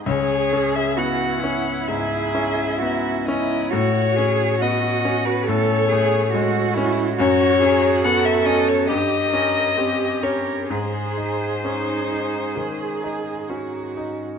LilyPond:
<<
  \new Staff \with { instrumentName = "Violin" } { \time 4/4 \key cis \minor \tempo 4 = 66 cis''8. e''16 fis''4 e''4. dis''8 | cis''4 dis''8. b'16 cis''4. r8 | cis''4 fis''16 e''16 dis''16 cis''16 dis''4. cis''8 | bis'2. r4 | }
  \new Staff \with { instrumentName = "Cello" } { \time 4/4 \key cis \minor gis'4 fis'8 e'8 gis'4 fis'8 e'8 | fis'8 gis'8 fis'4 a'8 gis'8 fis'8 e'8 | fis'8 gis'8 a'4 g'8 ais'8 g'8 ais'8 | gis'2.~ gis'8 r8 | }
  \new Staff \with { instrumentName = "Viola" } { \time 4/4 \key cis \minor gis'4 e'2. | fis'2 a'8 gis'8 fis'4 | fis'2 g'4 g'4 | gis'4 dis'4 gis'4 fis'4 | }
  \new Staff \with { instrumentName = "Grand piano" } { \time 4/4 \key cis \minor cis,8 cis'8 b8 cis'8 gis,8 cis'8 b8 cis'8 | a,8 cis'8 b8 cis'8 a,8 a8 gis8 cis'8 | fis,8 cis'8 b8 cis'8 g,8 cis'8 bis8 cis'8 | gis,8 dis'8 cis'8 dis'8 dis8 dis'8 cis'8 dis'8 | }
>>